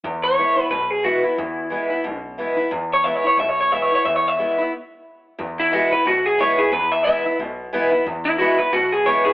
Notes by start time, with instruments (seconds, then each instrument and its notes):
0.04 upright bass E2, steel-string acoustic guitar E2
0.24 clean electric guitar C#5
0.37 steel-string acoustic guitar E3 G#3 B3 E4
0.56 steel-string acoustic guitar B3 E4, muted upright bass stroke
0.70 upright bass B1, steel-string acoustic guitar B2, clean electric guitar B4
0.90 clean electric guitar G#4
1.04 steel-string acoustic guitar E3 G#3 B3 E4, clean electric guitar F#4
1.23 steel-string acoustic guitar B3 E4, clean electric guitar E4, muted upright bass stroke
1.38 upright bass E2, steel-string acoustic guitar E2
1.70 steel-string acoustic guitar E3 G#3 B3 E4
1.90 steel-string acoustic guitar B3 E4, muted upright bass stroke
2.04 upright bass B1, steel-string acoustic guitar B2
2.38 steel-string acoustic guitar E3 G#3 B3 E4
2.56 steel-string acoustic guitar B3 E4, muted upright bass stroke
2.71 steel-string acoustic guitar E2, upright bass E2
2.93 clean electric guitar C#5
3.04 steel-string acoustic guitar E3 G#3 B3 E4, clean electric guitar E5
3.16 clean electric guitar C#5
3.24 steel-string acoustic guitar B3 E4, clean electric guitar C#5, muted upright bass stroke
3.37 upright bass B1, steel-string acoustic guitar B2, clean electric guitar E5
3.49 clean electric guitar C#5
3.61 clean electric guitar C#5
3.71 steel-string acoustic guitar E3 G#3 B3 E4, clean electric guitar E5
3.82 clean electric guitar C#5
3.91 steel-string acoustic guitar B3 E4, clean electric guitar C#5, muted upright bass stroke
4.05 steel-string acoustic guitar E2, upright bass E2, clean electric guitar E5
4.16 clean electric guitar C#5
4.28 clean electric guitar E5
4.38 steel-string acoustic guitar E3 G#3 B3 E4
4.58 steel-string acoustic guitar B3 E4, muted upright bass stroke
5.39 steel-string acoustic guitar E2, upright bass E2
5.60 clean electric guitar E4
5.71 steel-string acoustic guitar E3 G#3 B3 E4, clean electric guitar F#4
5.91 steel-string acoustic guitar B3 E4, clean electric guitar B4, muted upright bass stroke
6.05 upright bass B1, steel-string acoustic guitar B2, clean electric guitar F#4
6.26 clean electric guitar G#4
6.38 steel-string acoustic guitar E3 G#3 B3 E4, clean electric guitar C#5
6.57 steel-string acoustic guitar B3 E4, clean electric guitar G#4, muted upright bass stroke
6.72 steel-string acoustic guitar E2, upright bass E2, clean electric guitar B4
6.92 clean electric guitar E5
7.04 steel-string acoustic guitar E3 G#3 B3 E4, clean electric guitar E5
7.25 steel-string acoustic guitar B3 E4, muted upright bass stroke
7.39 upright bass B1, steel-string acoustic guitar B2
7.73 steel-string acoustic guitar E3 G#3 B3 E4
7.91 steel-string acoustic guitar B3 E4, muted upright bass stroke
8.06 upright bass E2, steel-string acoustic guitar E2
8.25 clean electric guitar E4
8.38 steel-string acoustic guitar E3 G#3 B3 E4, clean electric guitar F#4
8.59 steel-string acoustic guitar B3 E4, clean electric guitar B4, muted upright bass stroke
8.73 upright bass B1, steel-string acoustic guitar B2, clean electric guitar F#4
8.92 clean electric guitar G#4
9.05 steel-string acoustic guitar E3 G#3 B3 E4, clean electric guitar C#5
9.25 steel-string acoustic guitar B3 E4, clean electric guitar G#4, muted upright bass stroke